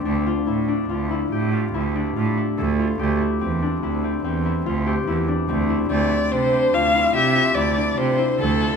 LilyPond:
<<
  \new Staff \with { instrumentName = "Violin" } { \time 7/4 \key d \minor \tempo 4 = 144 r1. r4 | r1. r4 | d''4 c''4 f''4 e''4 d''4 c''4 a'4 | }
  \new Staff \with { instrumentName = "Harp" } { \time 7/4 \key d \minor d'8 f'8 e'8 d'8 f'8 e'8 g'8 f'8 e'8 d'8 f'8 e'8 a'8 f'8 | g'8 e'8 c'8 d'8 e'8 c'8 c'8 e'8 f'8 g'8 e'8 d'8 c'8 e'8 | c'8 e'8 d'8 c'8 f'8 e'8 g'8 f'8 e'8 d'8 f'8 e'8 a'8 f'8 | }
  \new Staff \with { instrumentName = "Cello" } { \clef bass \time 7/4 \key d \minor d,8 r8 a,4 d,4 a,4 d,4 a,8 r8 d,4 | d,8 r8 e,4 d,4 e,4 d,4 e,8 r8 d,4 | d,8 r8 c4 d,4 c4 d,4 c8 r8 d,4 | }
>>